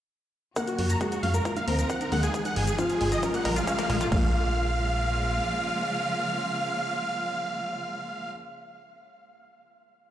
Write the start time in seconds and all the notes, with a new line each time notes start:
0.56 A#2 C#3 F#3 A#3 C#4 F#4 A#4 F#5, kick, closed hi-hat, riser, shaker
0.67 F#4, closed hi-hat, shaker
0.79 F#2 F#4, open hi-hat
0.90 A#5, closed hi-hat, shaker
1.01 G#3 C#4 F#4 G#4, kick, closed hi-hat, shaker
1.12 F#4, closed hi-hat, shaker
1.23 F#2 A#3 F5, open hi-hat
1.34 A#4, closed hi-hat, shaker
1.45 D#3 F3 D#4 F4 A#4, kick, closed hi-hat, shaker
1.56 D#4 F5, closed hi-hat, shaker
1.67 D#2 A#3 C4 A#4 C5, open hi-hat
1.79 A#4, closed hi-hat, shaker
1.90 F4 F#5, kick, closed hi-hat, shaker
2.01 D#4 A#4, closed hi-hat, shaker
2.12 D#2 G#3 A#3 G#4 F#5, open hi-hat
2.23 G#4 A#4, closed hi-hat, shaker
2.34 C3 G#3 G#4, kick, closed hi-hat, shaker
2.45 D#4 F#5, closed hi-hat, shaker
2.56 G#1 G#4, open hi-hat
2.67 G#4, closed hi-hat, shaker
2.78 F3 C4 F4 F5, kick, closed hi-hat, shaker
2.90 G#4, closed hi-hat, shaker
3.01 G#1 G#3 G#4, open hi-hat
3.12 G#4 D#5, closed hi-hat, shaker
3.23 C#3 F3 A#3 C#4 F4 A#4, kick, closed hi-hat, shaker
3.34 A#3 F#5, closed hi-hat, shaker
3.45 A#1 G#3 A#4, kick, open hi-hat
3.56 F4 F5, closed hi-hat, shaker
3.67 C#4, kick, closed hi-hat, shaker
3.79 A#3, kick, closed hi-hat, shaker
3.90 A#1 G#3, kick, open hi-hat
4.01 F4, kick, closed hi-hat, shaker
4.12 A#1 C#3 F3 G#3 A#3 F4 F5, kick, crash